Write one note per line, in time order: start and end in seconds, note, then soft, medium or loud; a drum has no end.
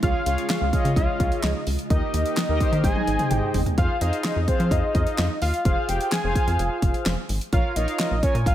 0.00 0.13 C#2 loud
0.00 1.88 C#3 medium
0.00 1.86 G#3 medium
0.00 1.86 F4 medium
0.00 0.22 F4 medium
0.00 0.22 G#4 medium
0.00 0.22 C#5 medium
0.00 0.22 F5 medium
0.00 0.46 F5 loud
0.00 kick loud
0.00 closed hi-hat medium
0.26 0.37 C#2 loud
0.26 0.65 F4 medium
0.26 0.65 G#4 medium
0.26 0.65 C#5 medium
0.26 0.65 F5 medium
0.26 closed hi-hat medium
0.38 closed hi-hat medium
0.50 0.93 F5 loud
0.50 snare loud
0.50 clap loud
0.50 closed hi-hat medium
0.61 0.72 C#2 loud
0.73 1.50 F4 medium
0.73 1.50 G#4 medium
0.73 1.50 C#5 medium
0.73 1.50 D#5 medium
0.73 kick medium
0.73 closed hi-hat medium
0.85 0.95 C#3 medium
0.85 closed hi-hat medium
0.96 1.07 C#2 loud
0.96 1.46 F5 loud
0.96 kick loud
0.96 closed hi-hat medium
1.20 1.30 C#2 loud
1.20 kick loud
1.20 closed hi-hat medium
1.32 closed hi-hat medium
1.43 1.54 C#2 loud
1.43 1.63 D#5 loud
1.43 snare loud
1.43 clap medium
1.43 closed hi-hat medium
1.67 1.77 C#2 medium
1.67 open hi-hat medium
1.79 closed hi-hat medium
1.90 2.01 D#2 loud
1.90 2.83 D#3 medium
1.90 2.83 A#3 medium
1.90 2.39 D#4 medium
1.90 2.83 G4 medium
1.90 2.39 G4 medium
1.90 2.39 A#4 medium
1.90 2.80 D#5 medium
1.90 2.39 D#5 medium
1.90 kick loud
1.90 closed hi-hat medium
2.14 2.24 D#2 loud
2.14 closed hi-hat medium
2.26 closed hi-hat medium
2.37 snare loud
2.37 clap loud
2.37 closed hi-hat medium
2.49 2.59 D#2 loud
2.49 2.59 D#4 medium
2.49 2.59 G4 medium
2.49 2.59 A#4 medium
2.49 2.59 D#5 loud
2.60 2.83 D#4 medium
2.60 2.84 G4 medium
2.60 2.84 A#4 medium
2.60 2.83 C5 loud
2.60 kick medium
2.60 closed hi-hat medium
2.72 2.83 D#3 loud
2.72 closed hi-hat medium
2.84 2.94 G#1 loud
2.84 3.77 C3 medium
2.84 3.77 G#3 medium
2.84 3.61 D#4 medium
2.84 3.77 D#4 medium
2.84 3.61 G#4 medium
2.84 3.61 C5 medium
2.84 3.61 D#5 medium
2.84 3.30 G#5 loud
2.84 kick loud
2.84 closed hi-hat medium
2.84 high tom medium
2.96 high tom medium
3.07 3.18 G#1 loud
3.07 closed hi-hat medium
3.19 closed hi-hat medium
3.19 mid tom medium
3.30 3.41 G#1 medium
3.30 3.50 G5 loud
3.30 closed hi-hat medium
3.30 mid tom medium
3.54 3.65 G1 medium
3.54 floor tom loud
3.54 open hi-hat medium
3.66 closed hi-hat medium
3.66 floor tom medium
3.78 3.88 F2 loud
3.78 3.97 F4 medium
3.78 3.97 G#4 medium
3.78 3.97 C5 medium
3.78 3.97 F5 medium
3.78 4.03 F5 loud
3.78 kick loud
3.78 closed hi-hat medium
4.01 4.12 F2 loud
4.01 4.40 F4 medium
4.01 4.40 G#4 medium
4.01 4.40 C5 medium
4.01 4.24 D#5 medium
4.01 4.40 F5 medium
4.01 closed hi-hat medium
4.13 closed hi-hat medium
4.25 4.50 D#5 medium
4.25 snare loud
4.25 clap loud
4.25 closed hi-hat medium
4.36 4.47 F2 loud
4.48 5.25 F4 medium
4.48 5.25 G#4 medium
4.48 4.73 C5 medium
4.48 5.25 C5 medium
4.48 5.25 F5 medium
4.48 kick medium
4.48 closed hi-hat medium
4.60 4.70 F3 loud
4.60 closed hi-hat medium
4.71 4.82 F2 loud
4.71 4.94 D#5 loud
4.71 kick loud
4.71 closed hi-hat medium
4.95 5.05 F2 loud
4.95 5.38 D#5 loud
4.95 kick loud
4.95 closed hi-hat medium
5.07 closed hi-hat medium
5.18 5.29 F2 loud
5.18 snare loud
5.18 clap loud
5.18 closed hi-hat medium
5.42 5.52 D#2 medium
5.42 5.64 F5 loud
5.42 open hi-hat medium
5.54 closed hi-hat medium
5.65 5.76 F1 loud
5.65 6.13 F4 medium
5.65 6.13 G#4 medium
5.65 6.13 C5 medium
5.65 6.13 F5 medium
5.65 5.90 F5 loud
5.65 kick loud
5.65 closed hi-hat medium
5.89 5.99 F1 loud
5.89 6.11 G5 loud
5.89 closed hi-hat medium
6.01 closed hi-hat medium
6.12 6.78 G#5 loud
6.12 snare loud
6.12 clap loud
6.12 closed hi-hat medium
6.24 6.34 F1 loud
6.24 6.34 F4 medium
6.24 6.34 G#4 medium
6.24 6.34 C5 medium
6.24 6.34 F5 medium
6.35 7.13 F4 medium
6.35 7.13 G#4 medium
6.35 7.13 C5 medium
6.35 7.13 F5 medium
6.35 kick medium
6.35 closed hi-hat medium
6.47 6.58 F2 loud
6.47 closed hi-hat medium
6.59 6.69 F1 loud
6.59 closed hi-hat medium
6.82 6.93 F1 loud
6.82 kick medium
6.82 closed hi-hat medium
6.94 closed hi-hat medium
7.06 7.16 F1 loud
7.06 snare loud
7.06 clap medium
7.06 closed hi-hat medium
7.29 7.40 G#1 loud
7.29 open hi-hat medium
7.41 closed hi-hat medium
7.53 7.63 A#1 loud
7.53 7.72 F4 medium
7.53 7.72 A#4 medium
7.53 7.72 C#5 medium
7.53 7.72 F5 medium
7.53 7.78 F5 medium
7.53 kick loud
7.53 closed hi-hat medium
7.76 7.87 A#1 loud
7.76 8.15 F4 medium
7.76 8.15 A#4 medium
7.76 8.15 C#5 medium
7.76 7.99 D#5 medium
7.76 8.15 F5 medium
7.76 closed hi-hat medium
7.88 closed hi-hat medium
8.00 8.22 D#5 medium
8.00 snare loud
8.00 clap loud
8.00 closed hi-hat medium
8.11 8.22 A#1 loud
8.23 8.55 F4 medium
8.23 8.55 A#4 medium
8.23 8.55 C#5 medium
8.23 8.34 C#5 medium
8.23 8.55 G#5 medium
8.23 kick medium
8.23 closed hi-hat medium
8.35 8.45 A#2 loud
8.35 closed hi-hat medium
8.46 8.55 A#1 loud
8.46 8.55 F5 loud
8.46 kick loud
8.46 closed hi-hat medium